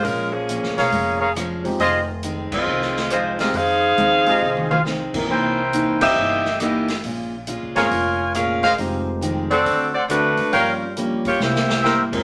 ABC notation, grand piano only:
X:1
M:4/4
L:1/8
Q:"Swing" 1/4=137
K:Fm
V:1 name="Grand piano"
z6 z [F,A,CEG] | z6 z [F,A,CEG] | z3 [F,A,CEG] z3 [=E,B,C_EB] | z3 [=E,B,C^DG] z4 |
z3 [F,B,CDA] z4 | [F,A,CEG]3 z4 z | z2 [G,B,DFG]2 z3 [F,A,CEB] |]